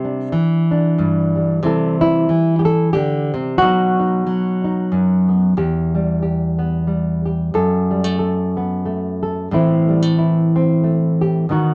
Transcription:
Already playing: C3 G3 G4
0.04 D4
0.32 E3
0.71 D4
0.98 G2
1.36 G3
1.63 C3 E3 G3 E4 A4
2.01 E4
2.29 E3
2.59 G4
2.65 A4
2.93 D3 G4
3.34 C3
3.58 B2 F#3 F#4
3.63 B3 D#4
3.99 D#4
4.27 F#3
4.64 D#4
4.92 F#2
5.28 B3
5.57 E2 G4
5.95 G3
6.23 G4
6.59 B3
6.87 G3
7.26 G4
7.54 F#2 A4
7.91 G3
8.04 A3
8.19 A4
8.57 B3
8.86 A3
9.23 A4
9.51 A2 E3 A3 C4 E4
9.89 G3
10.03 A3
10.19 E4
10.56 C4
10.84 A3
11.21 G4
11.49 B2 D#3 B3 D#4 F#4

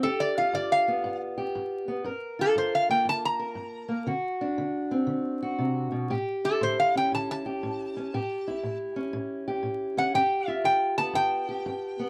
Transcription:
Already playing: D4
0.03 G2 G4 A4
0.20 D5
0.38 F4 F5
0.53 G2 D5
0.72 F5
0.88 B3
1.04 G2
1.38 G4
1.55 G2
1.88 B3
2.04 G2 A#4
2.39 F4 A4
2.56 G2 C5
2.75 F5
2.89 A#3 G5
3.05 G2 A5
3.25 A#5
3.39 A#4
3.55 G2
3.88 A#3
4.07 D3 F#4
4.41 D4
4.58 D3
4.91 C4
5.07 D3
5.42 F#4
5.59 C3
5.92 B2
6.10 A2 G4
6.44 E4 A4
6.61 A2 C5
6.79 F5
6.95 C#4 G5
7.12 A2 A5
7.31 A5
7.46 G4
7.63 A2
7.97 C#4
8.14 A2 G4
8.47 E4
8.63 A2
8.96 C#4
9.13 A2
9.48 G4
9.63 A2
9.97 C#4 F#5
10.14 G2 G4 G5
10.48 F4 E5
10.64 G2 G5
10.98 B3 A5
11.13 G2 G5
11.49 G4
11.66 G2
11.99 B3

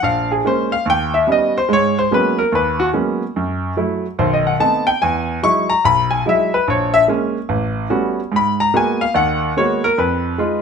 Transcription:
0.03 A#1 F5
0.32 G#4
0.45 G#3 A#3 C#4 C5
0.72 F5
0.86 D#2
0.90 G5
1.14 E5
1.27 G3 B3 C#4 D#4
1.32 D#5
1.58 C5
1.69 G#2 G#3
1.73 C#5
1.99 C5
2.11 F#3 G#3 A#3 B3 C#4 B4
2.38 A#4
2.52 D#2 B4
2.80 F#4
2.93 F#3 G#3 A#3 B3 C#4
3.36 F#2
3.77 F#3 A3 E4
4.19 B1 D#3 C5
4.33 D#5
4.47 F#5
4.60 A3 B3 C4 D#4 A5
4.87 G5
5.02 E2 G#5
5.43 F#3 G#3 D#4 E4 C#6
5.70 A#5
5.85 B1 B5
6.11 G#5
6.26 F#3 G#3 D#4 E4 E5
6.54 B4
6.68 A#1 C#5
6.94 E5
7.08 G#3 A#3 C#4
7.49 A1
7.90 G3 A3 B3 C#4 F#4
8.32 G#2
8.36 B5
8.60 A#5
8.74 G#3 A#3 B3 F#4 G#5
9.01 F5
9.14 D#2 D#3 F#5
9.57 G#3 A#3 B3 F#4 C#5
9.84 A#4
9.98 F2 B4
10.38 G#3 D#4 F4

